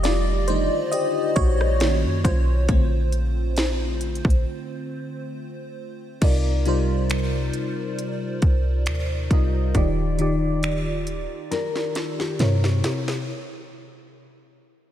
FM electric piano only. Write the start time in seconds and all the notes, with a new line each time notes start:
Already playing: D3 D#3 G3 A3 G4 D#5
0.03 F4 D5
0.48 D#3 G3 A3 D4 D#4 C5
0.92 G4 D#5
1.36 F#4 C#5
1.81 D#3 A#3 C#4
2.24 F4 C5
2.69 D3 A3 C4
6.21 C3 G3 D#4 F4 A#4 D5
6.66 C3 G3 D#4 F4 A#4 C5
9.30 C3 G3 D#4 F4 A#4 D#5
9.74 D#3 D#4 F4 G4 D5
10.19 D#3 D#4 F4 G4 D5
12.39 C3 C4 E4 A#4 C#5
12.83 C3 C4 E4 A#4 C#5